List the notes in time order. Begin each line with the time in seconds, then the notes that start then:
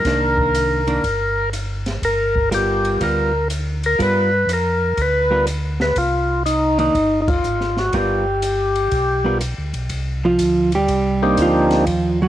Already playing: A#4
0.05 C2 D#3 A#3 D4, kick, snare, ride
0.38 kick
0.55 hi-hat pedal, ride
0.87 D#3 A#3 D4, ride
1.04 G1, kick, ride
1.53 hi-hat pedal, ride
1.86 snare, ride
2.02 G1 A#4, kick, ride
2.36 kick
2.51 G3 B3 F4 G4 A#4, hi-hat pedal, ride
2.85 ride
3.01 D2 G3 B3 F4 A#4, kick, ride
3.50 hi-hat pedal, ride
3.83 A#4, ride
3.99 G2 G3 B3 F4 A#4 B4, kick, ride
4.47 F2, hi-hat pedal, ride
4.53 A#4
4.97 D2, kick, ride
5.02 B4
5.31 G3 B3 F4 A#4
5.47 hi-hat pedal, ride
5.80 B4, snare
5.96 C2 F4, kick, ride
6.46 D#4, hi-hat pedal, ride
6.78 D#3 A#3 D4 D#4, ride
6.95 G1, kick, ride
7.22 D#4
7.28 F4, kick, ride
7.44 G#1, hi-hat pedal
7.61 snare
7.77 F#4, snare
7.93 G1 G3 B3 F4 G4 A#4, kick, ride
8.42 hi-hat pedal, ride
8.75 ride
8.91 B1, kick, ride
9.24 G3 B3 F4 A#4
9.41 hi-hat pedal, ride
9.58 D2
9.73 B1, ride
9.89 C2, kick, ride
10.25 F3 F4
10.39 D2, kick, hi-hat pedal, ride
10.72 G3 G4, ride
10.88 C2, kick, ride
11.22 A#3 C4 D4 D#4 G4
11.37 D2, kick, hi-hat pedal, ride
11.42 F3 F4
11.71 snare, ride
11.87 D#2, kick, ride
12.22 F#3 F#4